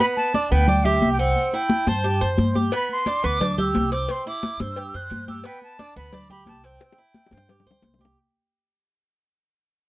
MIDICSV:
0, 0, Header, 1, 5, 480
1, 0, Start_track
1, 0, Tempo, 340522
1, 7, Time_signature, 4, 2, 24, 8
1, 13927, End_track
2, 0, Start_track
2, 0, Title_t, "Flute"
2, 0, Program_c, 0, 73
2, 234, Note_on_c, 0, 81, 91
2, 686, Note_off_c, 0, 81, 0
2, 716, Note_on_c, 0, 79, 114
2, 1193, Note_on_c, 0, 76, 104
2, 1214, Note_off_c, 0, 79, 0
2, 1581, Note_off_c, 0, 76, 0
2, 1590, Note_on_c, 0, 79, 78
2, 1681, Note_on_c, 0, 78, 94
2, 1702, Note_off_c, 0, 79, 0
2, 2152, Note_off_c, 0, 78, 0
2, 2160, Note_on_c, 0, 79, 96
2, 2655, Note_on_c, 0, 81, 88
2, 2677, Note_off_c, 0, 79, 0
2, 3231, Note_off_c, 0, 81, 0
2, 3872, Note_on_c, 0, 83, 104
2, 4083, Note_off_c, 0, 83, 0
2, 4123, Note_on_c, 0, 84, 103
2, 4594, Note_on_c, 0, 86, 114
2, 4616, Note_off_c, 0, 84, 0
2, 5053, Note_off_c, 0, 86, 0
2, 5062, Note_on_c, 0, 88, 104
2, 5538, Note_on_c, 0, 86, 102
2, 5559, Note_off_c, 0, 88, 0
2, 5793, Note_on_c, 0, 84, 112
2, 5814, Note_off_c, 0, 86, 0
2, 6020, Note_off_c, 0, 84, 0
2, 6033, Note_on_c, 0, 86, 104
2, 6487, Note_on_c, 0, 88, 117
2, 6509, Note_off_c, 0, 86, 0
2, 6990, Note_on_c, 0, 90, 127
2, 7011, Note_off_c, 0, 88, 0
2, 7448, Note_off_c, 0, 90, 0
2, 7456, Note_on_c, 0, 88, 109
2, 7695, Note_on_c, 0, 79, 108
2, 7717, Note_off_c, 0, 88, 0
2, 7932, Note_off_c, 0, 79, 0
2, 7944, Note_on_c, 0, 81, 99
2, 8383, Note_off_c, 0, 81, 0
2, 8417, Note_on_c, 0, 83, 97
2, 8860, Note_off_c, 0, 83, 0
2, 8890, Note_on_c, 0, 83, 103
2, 9113, Note_off_c, 0, 83, 0
2, 9132, Note_on_c, 0, 81, 99
2, 9378, Note_on_c, 0, 79, 86
2, 9400, Note_off_c, 0, 81, 0
2, 11054, Note_off_c, 0, 79, 0
2, 13927, End_track
3, 0, Start_track
3, 0, Title_t, "Cuban tres"
3, 0, Program_c, 1, 25
3, 3, Note_on_c, 1, 59, 98
3, 470, Note_off_c, 1, 59, 0
3, 485, Note_on_c, 1, 62, 83
3, 719, Note_off_c, 1, 62, 0
3, 728, Note_on_c, 1, 59, 92
3, 959, Note_off_c, 1, 59, 0
3, 965, Note_on_c, 1, 62, 68
3, 1198, Note_off_c, 1, 62, 0
3, 1201, Note_on_c, 1, 67, 87
3, 1669, Note_off_c, 1, 67, 0
3, 1680, Note_on_c, 1, 60, 82
3, 2149, Note_off_c, 1, 60, 0
3, 2166, Note_on_c, 1, 64, 73
3, 2632, Note_off_c, 1, 64, 0
3, 2643, Note_on_c, 1, 72, 89
3, 2877, Note_off_c, 1, 72, 0
3, 2878, Note_on_c, 1, 67, 75
3, 3115, Note_off_c, 1, 67, 0
3, 3117, Note_on_c, 1, 72, 95
3, 3587, Note_off_c, 1, 72, 0
3, 3599, Note_on_c, 1, 67, 69
3, 3836, Note_off_c, 1, 67, 0
3, 3846, Note_on_c, 1, 59, 91
3, 4312, Note_off_c, 1, 59, 0
3, 4325, Note_on_c, 1, 62, 86
3, 4557, Note_off_c, 1, 62, 0
3, 4563, Note_on_c, 1, 59, 87
3, 4798, Note_off_c, 1, 59, 0
3, 4808, Note_on_c, 1, 62, 77
3, 5040, Note_off_c, 1, 62, 0
3, 5047, Note_on_c, 1, 67, 93
3, 5513, Note_off_c, 1, 67, 0
3, 5524, Note_on_c, 1, 60, 77
3, 5991, Note_off_c, 1, 60, 0
3, 6016, Note_on_c, 1, 64, 88
3, 6478, Note_off_c, 1, 64, 0
3, 6494, Note_on_c, 1, 72, 81
3, 6722, Note_on_c, 1, 67, 76
3, 6724, Note_off_c, 1, 72, 0
3, 6958, Note_off_c, 1, 67, 0
3, 6966, Note_on_c, 1, 72, 88
3, 7433, Note_off_c, 1, 72, 0
3, 7442, Note_on_c, 1, 67, 77
3, 7678, Note_off_c, 1, 67, 0
3, 7686, Note_on_c, 1, 59, 103
3, 8153, Note_off_c, 1, 59, 0
3, 8163, Note_on_c, 1, 62, 80
3, 8398, Note_off_c, 1, 62, 0
3, 8407, Note_on_c, 1, 59, 94
3, 8640, Note_off_c, 1, 59, 0
3, 8646, Note_on_c, 1, 62, 72
3, 8880, Note_off_c, 1, 62, 0
3, 8885, Note_on_c, 1, 67, 92
3, 9352, Note_off_c, 1, 67, 0
3, 9362, Note_on_c, 1, 60, 77
3, 9831, Note_off_c, 1, 60, 0
3, 9843, Note_on_c, 1, 64, 76
3, 10311, Note_off_c, 1, 64, 0
3, 10327, Note_on_c, 1, 72, 84
3, 10561, Note_off_c, 1, 72, 0
3, 10566, Note_on_c, 1, 67, 69
3, 10800, Note_off_c, 1, 67, 0
3, 10807, Note_on_c, 1, 72, 91
3, 11274, Note_off_c, 1, 72, 0
3, 11286, Note_on_c, 1, 67, 75
3, 11520, Note_off_c, 1, 67, 0
3, 13927, End_track
4, 0, Start_track
4, 0, Title_t, "Upright bass"
4, 0, Program_c, 2, 32
4, 728, Note_on_c, 2, 38, 104
4, 1397, Note_off_c, 2, 38, 0
4, 1437, Note_on_c, 2, 36, 97
4, 1865, Note_off_c, 2, 36, 0
4, 2634, Note_on_c, 2, 43, 108
4, 3086, Note_off_c, 2, 43, 0
4, 3126, Note_on_c, 2, 42, 62
4, 3349, Note_off_c, 2, 42, 0
4, 3358, Note_on_c, 2, 43, 102
4, 3786, Note_off_c, 2, 43, 0
4, 4567, Note_on_c, 2, 38, 108
4, 5237, Note_off_c, 2, 38, 0
4, 5289, Note_on_c, 2, 36, 101
4, 5712, Note_off_c, 2, 36, 0
4, 6487, Note_on_c, 2, 43, 105
4, 6934, Note_off_c, 2, 43, 0
4, 6967, Note_on_c, 2, 42, 68
4, 7191, Note_off_c, 2, 42, 0
4, 7204, Note_on_c, 2, 43, 99
4, 7630, Note_off_c, 2, 43, 0
4, 8405, Note_on_c, 2, 38, 102
4, 9076, Note_off_c, 2, 38, 0
4, 9125, Note_on_c, 2, 36, 98
4, 9551, Note_off_c, 2, 36, 0
4, 10322, Note_on_c, 2, 43, 109
4, 10772, Note_off_c, 2, 43, 0
4, 10794, Note_on_c, 2, 38, 66
4, 11024, Note_off_c, 2, 38, 0
4, 11036, Note_on_c, 2, 36, 100
4, 11466, Note_off_c, 2, 36, 0
4, 13927, End_track
5, 0, Start_track
5, 0, Title_t, "Drums"
5, 6, Note_on_c, 9, 63, 38
5, 147, Note_off_c, 9, 63, 0
5, 242, Note_on_c, 9, 63, 33
5, 383, Note_off_c, 9, 63, 0
5, 483, Note_on_c, 9, 63, 62
5, 624, Note_off_c, 9, 63, 0
5, 719, Note_on_c, 9, 63, 42
5, 860, Note_off_c, 9, 63, 0
5, 954, Note_on_c, 9, 63, 39
5, 954, Note_on_c, 9, 64, 93
5, 1095, Note_off_c, 9, 63, 0
5, 1095, Note_off_c, 9, 64, 0
5, 1199, Note_on_c, 9, 63, 36
5, 1199, Note_on_c, 9, 64, 74
5, 1340, Note_off_c, 9, 63, 0
5, 1340, Note_off_c, 9, 64, 0
5, 1434, Note_on_c, 9, 63, 80
5, 1575, Note_off_c, 9, 63, 0
5, 1686, Note_on_c, 9, 63, 35
5, 1827, Note_off_c, 9, 63, 0
5, 1916, Note_on_c, 9, 63, 38
5, 2057, Note_off_c, 9, 63, 0
5, 2159, Note_on_c, 9, 63, 36
5, 2300, Note_off_c, 9, 63, 0
5, 2390, Note_on_c, 9, 63, 102
5, 2531, Note_off_c, 9, 63, 0
5, 2640, Note_on_c, 9, 63, 114
5, 2781, Note_off_c, 9, 63, 0
5, 2875, Note_on_c, 9, 63, 38
5, 3016, Note_off_c, 9, 63, 0
5, 3115, Note_on_c, 9, 63, 35
5, 3256, Note_off_c, 9, 63, 0
5, 3351, Note_on_c, 9, 63, 87
5, 3492, Note_off_c, 9, 63, 0
5, 3602, Note_on_c, 9, 63, 80
5, 3743, Note_off_c, 9, 63, 0
5, 3835, Note_on_c, 9, 56, 118
5, 3975, Note_off_c, 9, 56, 0
5, 4079, Note_on_c, 9, 63, 34
5, 4220, Note_off_c, 9, 63, 0
5, 4315, Note_on_c, 9, 56, 76
5, 4315, Note_on_c, 9, 63, 64
5, 4456, Note_off_c, 9, 56, 0
5, 4456, Note_off_c, 9, 63, 0
5, 4566, Note_on_c, 9, 63, 41
5, 4707, Note_off_c, 9, 63, 0
5, 4804, Note_on_c, 9, 56, 105
5, 4812, Note_on_c, 9, 63, 39
5, 4812, Note_on_c, 9, 64, 94
5, 4945, Note_off_c, 9, 56, 0
5, 4952, Note_off_c, 9, 63, 0
5, 4952, Note_off_c, 9, 64, 0
5, 5053, Note_on_c, 9, 63, 39
5, 5053, Note_on_c, 9, 64, 81
5, 5194, Note_off_c, 9, 63, 0
5, 5194, Note_off_c, 9, 64, 0
5, 5279, Note_on_c, 9, 63, 94
5, 5282, Note_on_c, 9, 56, 73
5, 5420, Note_off_c, 9, 63, 0
5, 5423, Note_off_c, 9, 56, 0
5, 5525, Note_on_c, 9, 56, 71
5, 5528, Note_on_c, 9, 63, 39
5, 5665, Note_off_c, 9, 56, 0
5, 5669, Note_off_c, 9, 63, 0
5, 5760, Note_on_c, 9, 56, 121
5, 5775, Note_on_c, 9, 63, 31
5, 5901, Note_off_c, 9, 56, 0
5, 5916, Note_off_c, 9, 63, 0
5, 6005, Note_on_c, 9, 63, 35
5, 6146, Note_off_c, 9, 63, 0
5, 6242, Note_on_c, 9, 56, 73
5, 6246, Note_on_c, 9, 63, 104
5, 6383, Note_off_c, 9, 56, 0
5, 6387, Note_off_c, 9, 63, 0
5, 6483, Note_on_c, 9, 56, 75
5, 6487, Note_on_c, 9, 63, 119
5, 6624, Note_off_c, 9, 56, 0
5, 6628, Note_off_c, 9, 63, 0
5, 6715, Note_on_c, 9, 56, 104
5, 6734, Note_on_c, 9, 63, 33
5, 6856, Note_off_c, 9, 56, 0
5, 6875, Note_off_c, 9, 63, 0
5, 6964, Note_on_c, 9, 63, 34
5, 7105, Note_off_c, 9, 63, 0
5, 7188, Note_on_c, 9, 56, 66
5, 7207, Note_on_c, 9, 63, 87
5, 7329, Note_off_c, 9, 56, 0
5, 7348, Note_off_c, 9, 63, 0
5, 7448, Note_on_c, 9, 63, 86
5, 7589, Note_off_c, 9, 63, 0
5, 7664, Note_on_c, 9, 56, 118
5, 7805, Note_off_c, 9, 56, 0
5, 7917, Note_on_c, 9, 63, 36
5, 8058, Note_off_c, 9, 63, 0
5, 8163, Note_on_c, 9, 56, 72
5, 8165, Note_on_c, 9, 63, 62
5, 8304, Note_off_c, 9, 56, 0
5, 8306, Note_off_c, 9, 63, 0
5, 8406, Note_on_c, 9, 63, 42
5, 8547, Note_off_c, 9, 63, 0
5, 8634, Note_on_c, 9, 56, 106
5, 8638, Note_on_c, 9, 63, 39
5, 8638, Note_on_c, 9, 64, 93
5, 8774, Note_off_c, 9, 56, 0
5, 8779, Note_off_c, 9, 63, 0
5, 8779, Note_off_c, 9, 64, 0
5, 8878, Note_on_c, 9, 63, 38
5, 8878, Note_on_c, 9, 64, 80
5, 9018, Note_off_c, 9, 63, 0
5, 9018, Note_off_c, 9, 64, 0
5, 9109, Note_on_c, 9, 63, 79
5, 9117, Note_on_c, 9, 56, 76
5, 9250, Note_off_c, 9, 63, 0
5, 9258, Note_off_c, 9, 56, 0
5, 9352, Note_on_c, 9, 63, 36
5, 9356, Note_on_c, 9, 56, 77
5, 9493, Note_off_c, 9, 63, 0
5, 9497, Note_off_c, 9, 56, 0
5, 9592, Note_on_c, 9, 63, 34
5, 9596, Note_on_c, 9, 56, 124
5, 9596, Note_on_c, 9, 60, 93
5, 9733, Note_off_c, 9, 63, 0
5, 9737, Note_off_c, 9, 56, 0
5, 9737, Note_off_c, 9, 60, 0
5, 9760, Note_on_c, 9, 60, 102
5, 9840, Note_on_c, 9, 63, 34
5, 9901, Note_off_c, 9, 60, 0
5, 9981, Note_off_c, 9, 63, 0
5, 10071, Note_on_c, 9, 63, 95
5, 10081, Note_on_c, 9, 56, 69
5, 10212, Note_off_c, 9, 63, 0
5, 10222, Note_off_c, 9, 56, 0
5, 10239, Note_on_c, 9, 60, 83
5, 10308, Note_on_c, 9, 63, 108
5, 10327, Note_on_c, 9, 56, 74
5, 10380, Note_off_c, 9, 60, 0
5, 10394, Note_on_c, 9, 61, 93
5, 10449, Note_off_c, 9, 63, 0
5, 10468, Note_off_c, 9, 56, 0
5, 10535, Note_off_c, 9, 61, 0
5, 10559, Note_on_c, 9, 56, 105
5, 10559, Note_on_c, 9, 61, 91
5, 10559, Note_on_c, 9, 63, 39
5, 10700, Note_off_c, 9, 56, 0
5, 10700, Note_off_c, 9, 61, 0
5, 10700, Note_off_c, 9, 63, 0
5, 10711, Note_on_c, 9, 61, 80
5, 10796, Note_on_c, 9, 63, 35
5, 10852, Note_off_c, 9, 61, 0
5, 10863, Note_on_c, 9, 61, 88
5, 10937, Note_off_c, 9, 63, 0
5, 11004, Note_off_c, 9, 61, 0
5, 11028, Note_on_c, 9, 63, 86
5, 11029, Note_on_c, 9, 56, 69
5, 11029, Note_on_c, 9, 61, 80
5, 11169, Note_off_c, 9, 63, 0
5, 11170, Note_off_c, 9, 56, 0
5, 11170, Note_off_c, 9, 61, 0
5, 11190, Note_on_c, 9, 61, 71
5, 11263, Note_on_c, 9, 63, 94
5, 11331, Note_off_c, 9, 61, 0
5, 11347, Note_on_c, 9, 61, 85
5, 11404, Note_off_c, 9, 63, 0
5, 11488, Note_off_c, 9, 61, 0
5, 13927, End_track
0, 0, End_of_file